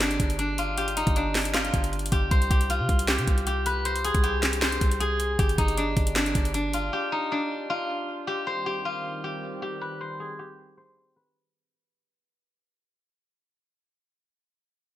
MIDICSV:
0, 0, Header, 1, 5, 480
1, 0, Start_track
1, 0, Key_signature, -3, "minor"
1, 0, Tempo, 384615
1, 967, Time_signature, 4, 2, 24, 8
1, 18665, End_track
2, 0, Start_track
2, 0, Title_t, "Guzheng"
2, 0, Program_c, 0, 107
2, 0, Note_on_c, 0, 67, 93
2, 0, Note_on_c, 0, 72, 88
2, 9, Note_on_c, 0, 62, 81
2, 480, Note_off_c, 0, 62, 0
2, 485, Note_on_c, 0, 62, 78
2, 558, Note_off_c, 0, 72, 0
2, 730, Note_on_c, 0, 65, 72
2, 963, Note_off_c, 0, 67, 0
2, 968, Note_on_c, 0, 67, 84
2, 1207, Note_on_c, 0, 63, 84
2, 1282, Note_off_c, 0, 62, 0
2, 1451, Note_on_c, 0, 62, 87
2, 1526, Note_off_c, 0, 63, 0
2, 1922, Note_off_c, 0, 65, 0
2, 1927, Note_on_c, 0, 65, 85
2, 2640, Note_off_c, 0, 67, 0
2, 2645, Note_on_c, 0, 67, 86
2, 2884, Note_on_c, 0, 72, 89
2, 3125, Note_off_c, 0, 67, 0
2, 3130, Note_on_c, 0, 67, 78
2, 3365, Note_off_c, 0, 65, 0
2, 3370, Note_on_c, 0, 65, 81
2, 3840, Note_off_c, 0, 67, 0
2, 3845, Note_on_c, 0, 67, 84
2, 4325, Note_off_c, 0, 67, 0
2, 4330, Note_on_c, 0, 67, 84
2, 4568, Note_on_c, 0, 71, 92
2, 4643, Note_off_c, 0, 72, 0
2, 4808, Note_on_c, 0, 72, 93
2, 4883, Note_off_c, 0, 71, 0
2, 4944, Note_off_c, 0, 62, 0
2, 5047, Note_on_c, 0, 68, 85
2, 5122, Note_off_c, 0, 67, 0
2, 5287, Note_on_c, 0, 67, 92
2, 5361, Note_off_c, 0, 68, 0
2, 5762, Note_off_c, 0, 72, 0
2, 5767, Note_on_c, 0, 72, 88
2, 6244, Note_on_c, 0, 68, 86
2, 6319, Note_off_c, 0, 67, 0
2, 6519, Note_off_c, 0, 65, 0
2, 6727, Note_on_c, 0, 67, 89
2, 6802, Note_off_c, 0, 68, 0
2, 6966, Note_on_c, 0, 63, 86
2, 7208, Note_on_c, 0, 62, 84
2, 7283, Note_off_c, 0, 63, 0
2, 7684, Note_off_c, 0, 62, 0
2, 7689, Note_on_c, 0, 62, 83
2, 8160, Note_off_c, 0, 62, 0
2, 8165, Note_on_c, 0, 62, 79
2, 8238, Note_off_c, 0, 72, 0
2, 8410, Note_on_c, 0, 65, 70
2, 8642, Note_off_c, 0, 67, 0
2, 8647, Note_on_c, 0, 67, 86
2, 8887, Note_on_c, 0, 63, 86
2, 8962, Note_off_c, 0, 62, 0
2, 9132, Note_on_c, 0, 62, 85
2, 9207, Note_off_c, 0, 63, 0
2, 9602, Note_off_c, 0, 65, 0
2, 9607, Note_on_c, 0, 65, 92
2, 10319, Note_off_c, 0, 67, 0
2, 10324, Note_on_c, 0, 67, 86
2, 10567, Note_on_c, 0, 72, 82
2, 10804, Note_off_c, 0, 67, 0
2, 10809, Note_on_c, 0, 67, 80
2, 11042, Note_off_c, 0, 65, 0
2, 11047, Note_on_c, 0, 65, 83
2, 11525, Note_off_c, 0, 67, 0
2, 11530, Note_on_c, 0, 67, 84
2, 12002, Note_off_c, 0, 67, 0
2, 12007, Note_on_c, 0, 67, 90
2, 12248, Note_on_c, 0, 71, 87
2, 12323, Note_off_c, 0, 72, 0
2, 12488, Note_on_c, 0, 72, 90
2, 12563, Note_off_c, 0, 71, 0
2, 12625, Note_off_c, 0, 62, 0
2, 12728, Note_on_c, 0, 68, 69
2, 12803, Note_off_c, 0, 67, 0
2, 12968, Note_on_c, 0, 67, 94
2, 13043, Note_off_c, 0, 68, 0
2, 13441, Note_off_c, 0, 72, 0
2, 13446, Note_on_c, 0, 72, 90
2, 13931, Note_on_c, 0, 71, 87
2, 14006, Note_off_c, 0, 72, 0
2, 14195, Note_off_c, 0, 65, 0
2, 15906, Note_off_c, 0, 67, 0
2, 16488, Note_off_c, 0, 71, 0
2, 18665, End_track
3, 0, Start_track
3, 0, Title_t, "Analog synth pad"
3, 0, Program_c, 1, 89
3, 10566, Note_on_c, 1, 51, 79
3, 10566, Note_on_c, 1, 55, 75
3, 10566, Note_on_c, 1, 60, 75
3, 10567, Note_on_c, 1, 67, 85
3, 14368, Note_off_c, 1, 51, 0
3, 14368, Note_off_c, 1, 55, 0
3, 14368, Note_off_c, 1, 60, 0
3, 14369, Note_off_c, 1, 67, 0
3, 18665, End_track
4, 0, Start_track
4, 0, Title_t, "808-style bass"
4, 0, Program_c, 2, 38
4, 0, Note_on_c, 2, 31, 108
4, 228, Note_off_c, 2, 31, 0
4, 247, Note_on_c, 2, 31, 106
4, 1291, Note_off_c, 2, 31, 0
4, 1335, Note_on_c, 2, 31, 102
4, 2134, Note_off_c, 2, 31, 0
4, 2167, Note_on_c, 2, 31, 106
4, 2628, Note_off_c, 2, 31, 0
4, 2647, Note_on_c, 2, 31, 100
4, 2878, Note_off_c, 2, 31, 0
4, 2887, Note_on_c, 2, 36, 113
4, 3118, Note_off_c, 2, 36, 0
4, 3128, Note_on_c, 2, 36, 107
4, 3494, Note_on_c, 2, 48, 103
4, 3513, Note_off_c, 2, 36, 0
4, 3601, Note_off_c, 2, 48, 0
4, 3608, Note_on_c, 2, 36, 109
4, 3975, Note_on_c, 2, 48, 98
4, 3993, Note_off_c, 2, 36, 0
4, 4082, Note_off_c, 2, 48, 0
4, 4087, Note_on_c, 2, 36, 104
4, 5131, Note_off_c, 2, 36, 0
4, 5175, Note_on_c, 2, 36, 101
4, 5974, Note_off_c, 2, 36, 0
4, 6007, Note_on_c, 2, 36, 104
4, 6698, Note_off_c, 2, 36, 0
4, 6727, Note_on_c, 2, 31, 114
4, 6958, Note_off_c, 2, 31, 0
4, 6967, Note_on_c, 2, 31, 103
4, 7428, Note_off_c, 2, 31, 0
4, 7447, Note_on_c, 2, 31, 110
4, 7908, Note_off_c, 2, 31, 0
4, 7927, Note_on_c, 2, 31, 106
4, 8618, Note_off_c, 2, 31, 0
4, 18665, End_track
5, 0, Start_track
5, 0, Title_t, "Drums"
5, 7, Note_on_c, 9, 38, 110
5, 7, Note_on_c, 9, 42, 77
5, 16, Note_on_c, 9, 39, 88
5, 131, Note_off_c, 9, 38, 0
5, 132, Note_off_c, 9, 42, 0
5, 134, Note_on_c, 9, 42, 55
5, 141, Note_off_c, 9, 39, 0
5, 247, Note_off_c, 9, 42, 0
5, 247, Note_on_c, 9, 36, 82
5, 247, Note_on_c, 9, 42, 82
5, 372, Note_off_c, 9, 36, 0
5, 372, Note_off_c, 9, 42, 0
5, 373, Note_on_c, 9, 42, 65
5, 486, Note_off_c, 9, 42, 0
5, 486, Note_on_c, 9, 42, 76
5, 611, Note_off_c, 9, 42, 0
5, 725, Note_on_c, 9, 42, 76
5, 850, Note_off_c, 9, 42, 0
5, 967, Note_on_c, 9, 42, 70
5, 1092, Note_off_c, 9, 42, 0
5, 1096, Note_on_c, 9, 42, 55
5, 1209, Note_off_c, 9, 42, 0
5, 1209, Note_on_c, 9, 42, 82
5, 1333, Note_off_c, 9, 42, 0
5, 1333, Note_on_c, 9, 42, 57
5, 1335, Note_on_c, 9, 36, 99
5, 1448, Note_off_c, 9, 42, 0
5, 1448, Note_on_c, 9, 42, 75
5, 1459, Note_off_c, 9, 36, 0
5, 1573, Note_off_c, 9, 42, 0
5, 1687, Note_on_c, 9, 46, 90
5, 1688, Note_on_c, 9, 38, 98
5, 1697, Note_on_c, 9, 39, 76
5, 1812, Note_off_c, 9, 38, 0
5, 1812, Note_off_c, 9, 46, 0
5, 1813, Note_on_c, 9, 42, 81
5, 1822, Note_off_c, 9, 39, 0
5, 1927, Note_off_c, 9, 42, 0
5, 1927, Note_on_c, 9, 38, 112
5, 1927, Note_on_c, 9, 42, 76
5, 1937, Note_on_c, 9, 39, 88
5, 2052, Note_off_c, 9, 38, 0
5, 2052, Note_off_c, 9, 42, 0
5, 2054, Note_on_c, 9, 42, 54
5, 2062, Note_off_c, 9, 39, 0
5, 2167, Note_off_c, 9, 42, 0
5, 2167, Note_on_c, 9, 36, 83
5, 2167, Note_on_c, 9, 42, 80
5, 2292, Note_off_c, 9, 36, 0
5, 2292, Note_off_c, 9, 42, 0
5, 2294, Note_on_c, 9, 42, 62
5, 2407, Note_off_c, 9, 42, 0
5, 2407, Note_on_c, 9, 42, 45
5, 2487, Note_off_c, 9, 42, 0
5, 2487, Note_on_c, 9, 42, 61
5, 2567, Note_off_c, 9, 42, 0
5, 2567, Note_on_c, 9, 42, 77
5, 2645, Note_off_c, 9, 42, 0
5, 2645, Note_on_c, 9, 42, 77
5, 2647, Note_on_c, 9, 36, 105
5, 2770, Note_off_c, 9, 42, 0
5, 2772, Note_off_c, 9, 36, 0
5, 2887, Note_on_c, 9, 36, 119
5, 2887, Note_on_c, 9, 42, 67
5, 3012, Note_off_c, 9, 36, 0
5, 3012, Note_off_c, 9, 42, 0
5, 3017, Note_on_c, 9, 42, 53
5, 3127, Note_on_c, 9, 36, 89
5, 3129, Note_off_c, 9, 42, 0
5, 3129, Note_on_c, 9, 42, 83
5, 3252, Note_off_c, 9, 36, 0
5, 3254, Note_off_c, 9, 42, 0
5, 3254, Note_on_c, 9, 42, 56
5, 3368, Note_off_c, 9, 42, 0
5, 3368, Note_on_c, 9, 42, 77
5, 3493, Note_off_c, 9, 42, 0
5, 3606, Note_on_c, 9, 42, 64
5, 3608, Note_on_c, 9, 36, 87
5, 3731, Note_off_c, 9, 42, 0
5, 3732, Note_off_c, 9, 36, 0
5, 3733, Note_on_c, 9, 42, 82
5, 3847, Note_on_c, 9, 38, 116
5, 3848, Note_off_c, 9, 42, 0
5, 3848, Note_on_c, 9, 42, 75
5, 3857, Note_on_c, 9, 39, 93
5, 3972, Note_off_c, 9, 38, 0
5, 3972, Note_off_c, 9, 42, 0
5, 3975, Note_on_c, 9, 42, 54
5, 3982, Note_off_c, 9, 39, 0
5, 4087, Note_off_c, 9, 42, 0
5, 4087, Note_on_c, 9, 36, 83
5, 4087, Note_on_c, 9, 42, 79
5, 4212, Note_off_c, 9, 36, 0
5, 4212, Note_off_c, 9, 42, 0
5, 4214, Note_on_c, 9, 42, 63
5, 4327, Note_off_c, 9, 42, 0
5, 4327, Note_on_c, 9, 42, 73
5, 4451, Note_off_c, 9, 42, 0
5, 4566, Note_on_c, 9, 42, 77
5, 4691, Note_off_c, 9, 42, 0
5, 4808, Note_on_c, 9, 42, 69
5, 4933, Note_off_c, 9, 42, 0
5, 4937, Note_on_c, 9, 42, 56
5, 5049, Note_off_c, 9, 42, 0
5, 5049, Note_on_c, 9, 42, 82
5, 5173, Note_off_c, 9, 42, 0
5, 5173, Note_on_c, 9, 42, 57
5, 5175, Note_on_c, 9, 36, 101
5, 5288, Note_off_c, 9, 42, 0
5, 5288, Note_on_c, 9, 42, 75
5, 5300, Note_off_c, 9, 36, 0
5, 5412, Note_off_c, 9, 42, 0
5, 5527, Note_on_c, 9, 38, 93
5, 5527, Note_on_c, 9, 42, 66
5, 5537, Note_on_c, 9, 39, 76
5, 5651, Note_off_c, 9, 42, 0
5, 5652, Note_off_c, 9, 38, 0
5, 5653, Note_on_c, 9, 42, 83
5, 5662, Note_off_c, 9, 39, 0
5, 5767, Note_off_c, 9, 42, 0
5, 5767, Note_on_c, 9, 38, 111
5, 5767, Note_on_c, 9, 42, 77
5, 5777, Note_on_c, 9, 39, 89
5, 5892, Note_off_c, 9, 38, 0
5, 5892, Note_off_c, 9, 42, 0
5, 5894, Note_on_c, 9, 42, 53
5, 5901, Note_off_c, 9, 39, 0
5, 6007, Note_off_c, 9, 42, 0
5, 6007, Note_on_c, 9, 36, 84
5, 6007, Note_on_c, 9, 42, 82
5, 6132, Note_off_c, 9, 36, 0
5, 6132, Note_off_c, 9, 42, 0
5, 6134, Note_on_c, 9, 42, 64
5, 6246, Note_off_c, 9, 42, 0
5, 6246, Note_on_c, 9, 42, 75
5, 6371, Note_off_c, 9, 42, 0
5, 6486, Note_on_c, 9, 42, 77
5, 6611, Note_off_c, 9, 42, 0
5, 6727, Note_on_c, 9, 36, 120
5, 6727, Note_on_c, 9, 42, 69
5, 6852, Note_off_c, 9, 36, 0
5, 6852, Note_off_c, 9, 42, 0
5, 6856, Note_on_c, 9, 42, 55
5, 6967, Note_on_c, 9, 36, 92
5, 6968, Note_off_c, 9, 42, 0
5, 6968, Note_on_c, 9, 42, 84
5, 7092, Note_off_c, 9, 36, 0
5, 7092, Note_off_c, 9, 42, 0
5, 7093, Note_on_c, 9, 42, 56
5, 7207, Note_off_c, 9, 42, 0
5, 7207, Note_on_c, 9, 42, 75
5, 7332, Note_off_c, 9, 42, 0
5, 7446, Note_on_c, 9, 42, 64
5, 7447, Note_on_c, 9, 36, 91
5, 7571, Note_off_c, 9, 42, 0
5, 7572, Note_off_c, 9, 36, 0
5, 7572, Note_on_c, 9, 42, 83
5, 7687, Note_off_c, 9, 42, 0
5, 7687, Note_on_c, 9, 38, 114
5, 7687, Note_on_c, 9, 42, 75
5, 7696, Note_on_c, 9, 39, 88
5, 7811, Note_off_c, 9, 38, 0
5, 7812, Note_off_c, 9, 42, 0
5, 7814, Note_on_c, 9, 42, 55
5, 7821, Note_off_c, 9, 39, 0
5, 7926, Note_off_c, 9, 42, 0
5, 7926, Note_on_c, 9, 42, 80
5, 7927, Note_on_c, 9, 36, 83
5, 8051, Note_off_c, 9, 36, 0
5, 8051, Note_off_c, 9, 42, 0
5, 8053, Note_on_c, 9, 42, 64
5, 8165, Note_off_c, 9, 42, 0
5, 8165, Note_on_c, 9, 42, 75
5, 8290, Note_off_c, 9, 42, 0
5, 8405, Note_on_c, 9, 42, 78
5, 8530, Note_off_c, 9, 42, 0
5, 18665, End_track
0, 0, End_of_file